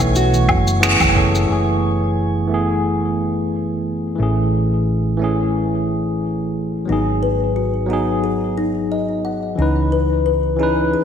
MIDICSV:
0, 0, Header, 1, 7, 480
1, 0, Start_track
1, 0, Tempo, 674157
1, 1067, Time_signature, 4, 2, 24, 8
1, 7860, End_track
2, 0, Start_track
2, 0, Title_t, "Synth texture"
2, 0, Program_c, 0, 99
2, 0, Note_on_c, 0, 73, 81
2, 0, Note_on_c, 0, 85, 76
2, 1073, Note_off_c, 0, 73, 0
2, 1076, Note_off_c, 0, 85, 0
2, 7860, End_track
3, 0, Start_track
3, 0, Title_t, "Kalimba"
3, 0, Program_c, 1, 108
3, 4906, Note_on_c, 1, 63, 67
3, 5135, Note_off_c, 1, 63, 0
3, 5145, Note_on_c, 1, 71, 65
3, 5374, Note_off_c, 1, 71, 0
3, 5384, Note_on_c, 1, 66, 65
3, 5520, Note_off_c, 1, 66, 0
3, 5625, Note_on_c, 1, 68, 69
3, 5760, Note_off_c, 1, 68, 0
3, 5864, Note_on_c, 1, 68, 72
3, 6094, Note_off_c, 1, 68, 0
3, 6105, Note_on_c, 1, 63, 84
3, 6334, Note_off_c, 1, 63, 0
3, 6348, Note_on_c, 1, 75, 61
3, 6565, Note_off_c, 1, 75, 0
3, 6584, Note_on_c, 1, 78, 63
3, 6720, Note_off_c, 1, 78, 0
3, 6827, Note_on_c, 1, 63, 71
3, 6961, Note_off_c, 1, 63, 0
3, 7065, Note_on_c, 1, 71, 63
3, 7294, Note_off_c, 1, 71, 0
3, 7304, Note_on_c, 1, 71, 66
3, 7440, Note_off_c, 1, 71, 0
3, 7544, Note_on_c, 1, 68, 70
3, 7774, Note_off_c, 1, 68, 0
3, 7786, Note_on_c, 1, 68, 73
3, 7860, Note_off_c, 1, 68, 0
3, 7860, End_track
4, 0, Start_track
4, 0, Title_t, "Nylon-string guitar"
4, 0, Program_c, 2, 24
4, 0, Note_on_c, 2, 68, 110
4, 115, Note_off_c, 2, 68, 0
4, 118, Note_on_c, 2, 66, 81
4, 804, Note_off_c, 2, 66, 0
4, 7860, End_track
5, 0, Start_track
5, 0, Title_t, "Tine electric piano"
5, 0, Program_c, 3, 4
5, 0, Control_c, 3, 64, 127
5, 0, Note_on_c, 3, 52, 92
5, 0, Note_on_c, 3, 57, 101
5, 0, Note_on_c, 3, 59, 81
5, 0, Note_on_c, 3, 61, 82
5, 0, Note_on_c, 3, 63, 71
5, 0, Note_on_c, 3, 71, 83
5, 117, Control_c, 3, 64, 0
5, 120, Note_off_c, 3, 63, 0
5, 122, Note_off_c, 3, 71, 0
5, 222, Control_c, 3, 64, 127
5, 549, Note_off_c, 3, 52, 0
5, 557, Note_off_c, 3, 59, 0
5, 564, Note_off_c, 3, 61, 0
5, 572, Note_off_c, 3, 57, 0
5, 573, Note_on_c, 3, 52, 89
5, 581, Note_on_c, 3, 59, 83
5, 589, Note_on_c, 3, 61, 80
5, 595, Note_on_c, 3, 68, 106
5, 792, Note_off_c, 3, 52, 0
5, 796, Note_off_c, 3, 59, 0
5, 800, Note_off_c, 3, 61, 0
5, 803, Note_off_c, 3, 68, 0
5, 811, Note_on_c, 3, 52, 72
5, 821, Note_on_c, 3, 59, 64
5, 828, Note_on_c, 3, 61, 70
5, 835, Note_on_c, 3, 69, 80
5, 1027, Note_off_c, 3, 52, 0
5, 1036, Note_off_c, 3, 59, 0
5, 1036, Note_on_c, 3, 52, 64
5, 1040, Note_off_c, 3, 61, 0
5, 1043, Note_off_c, 3, 69, 0
5, 1053, Note_on_c, 3, 57, 59
5, 1068, Note_on_c, 3, 59, 63
5, 1077, Control_c, 3, 64, 0
5, 1084, Note_on_c, 3, 68, 75
5, 1187, Control_c, 3, 64, 127
5, 1744, Note_off_c, 3, 52, 0
5, 1752, Note_off_c, 3, 57, 0
5, 1758, Note_on_c, 3, 52, 75
5, 1760, Note_off_c, 3, 59, 0
5, 1768, Note_off_c, 3, 68, 0
5, 1777, Note_on_c, 3, 57, 68
5, 1790, Note_on_c, 3, 59, 72
5, 1809, Note_on_c, 3, 68, 88
5, 2945, Note_off_c, 3, 52, 0
5, 2954, Note_off_c, 3, 57, 0
5, 2960, Note_on_c, 3, 52, 69
5, 2961, Note_off_c, 3, 59, 0
5, 2970, Note_off_c, 3, 68, 0
5, 2976, Note_on_c, 3, 57, 64
5, 2992, Note_on_c, 3, 61, 62
5, 2996, Control_c, 3, 64, 0
5, 3009, Note_on_c, 3, 68, 74
5, 3135, Control_c, 3, 64, 127
5, 3666, Note_off_c, 3, 52, 0
5, 3674, Note_off_c, 3, 57, 0
5, 3682, Note_off_c, 3, 61, 0
5, 3684, Note_on_c, 3, 52, 81
5, 3690, Note_off_c, 3, 68, 0
5, 3698, Note_on_c, 3, 57, 69
5, 3714, Note_on_c, 3, 61, 71
5, 3729, Note_on_c, 3, 68, 83
5, 4867, Note_off_c, 3, 52, 0
5, 4875, Note_off_c, 3, 57, 0
5, 4880, Note_on_c, 3, 54, 69
5, 4883, Note_off_c, 3, 61, 0
5, 4890, Note_off_c, 3, 68, 0
5, 4898, Note_on_c, 3, 59, 65
5, 4914, Note_on_c, 3, 63, 64
5, 4916, Control_c, 3, 64, 0
5, 4930, Note_on_c, 3, 68, 80
5, 5058, Control_c, 3, 64, 127
5, 5586, Note_off_c, 3, 54, 0
5, 5595, Note_off_c, 3, 59, 0
5, 5598, Note_on_c, 3, 54, 77
5, 5603, Note_off_c, 3, 63, 0
5, 5611, Note_off_c, 3, 68, 0
5, 5614, Note_on_c, 3, 59, 71
5, 5631, Note_on_c, 3, 63, 73
5, 5647, Note_on_c, 3, 68, 85
5, 6785, Note_off_c, 3, 54, 0
5, 6793, Note_off_c, 3, 59, 0
5, 6801, Note_off_c, 3, 63, 0
5, 6803, Note_on_c, 3, 52, 68
5, 6809, Note_off_c, 3, 68, 0
5, 6818, Note_on_c, 3, 61, 65
5, 6834, Note_on_c, 3, 63, 63
5, 6835, Control_c, 3, 64, 0
5, 6849, Note_on_c, 3, 71, 79
5, 6952, Control_c, 3, 64, 127
5, 7507, Note_off_c, 3, 52, 0
5, 7515, Note_off_c, 3, 61, 0
5, 7521, Note_on_c, 3, 52, 79
5, 7523, Note_off_c, 3, 63, 0
5, 7530, Note_off_c, 3, 71, 0
5, 7537, Note_on_c, 3, 61, 77
5, 7553, Note_on_c, 3, 63, 77
5, 7568, Note_on_c, 3, 71, 88
5, 7773, Note_off_c, 3, 52, 0
5, 7782, Note_off_c, 3, 61, 0
5, 7790, Note_off_c, 3, 63, 0
5, 7797, Note_off_c, 3, 71, 0
5, 7860, End_track
6, 0, Start_track
6, 0, Title_t, "Fingered electric bass"
6, 0, Program_c, 4, 33
6, 0, Note_on_c, 4, 35, 101
6, 348, Note_on_c, 4, 30, 73
6, 359, Note_off_c, 4, 35, 0
6, 677, Note_off_c, 4, 30, 0
6, 715, Note_on_c, 4, 30, 92
6, 1036, Note_off_c, 4, 30, 0
6, 1066, Note_on_c, 4, 30, 75
6, 2963, Note_off_c, 4, 30, 0
6, 2987, Note_on_c, 4, 33, 76
6, 4884, Note_off_c, 4, 33, 0
6, 4907, Note_on_c, 4, 32, 77
6, 6804, Note_off_c, 4, 32, 0
6, 6824, Note_on_c, 4, 37, 76
6, 7785, Note_off_c, 4, 37, 0
6, 7860, End_track
7, 0, Start_track
7, 0, Title_t, "Drums"
7, 110, Note_on_c, 9, 82, 68
7, 181, Note_off_c, 9, 82, 0
7, 239, Note_on_c, 9, 63, 64
7, 240, Note_on_c, 9, 82, 47
7, 311, Note_off_c, 9, 63, 0
7, 312, Note_off_c, 9, 82, 0
7, 346, Note_on_c, 9, 77, 81
7, 348, Note_on_c, 9, 36, 93
7, 418, Note_off_c, 9, 77, 0
7, 420, Note_off_c, 9, 36, 0
7, 479, Note_on_c, 9, 82, 68
7, 550, Note_off_c, 9, 82, 0
7, 591, Note_on_c, 9, 26, 86
7, 593, Note_on_c, 9, 82, 69
7, 663, Note_off_c, 9, 26, 0
7, 664, Note_off_c, 9, 82, 0
7, 714, Note_on_c, 9, 36, 90
7, 716, Note_on_c, 9, 63, 81
7, 716, Note_on_c, 9, 77, 74
7, 723, Note_on_c, 9, 82, 43
7, 786, Note_off_c, 9, 36, 0
7, 787, Note_off_c, 9, 63, 0
7, 787, Note_off_c, 9, 77, 0
7, 794, Note_off_c, 9, 82, 0
7, 829, Note_on_c, 9, 36, 57
7, 900, Note_off_c, 9, 36, 0
7, 961, Note_on_c, 9, 82, 69
7, 1032, Note_off_c, 9, 82, 0
7, 7860, End_track
0, 0, End_of_file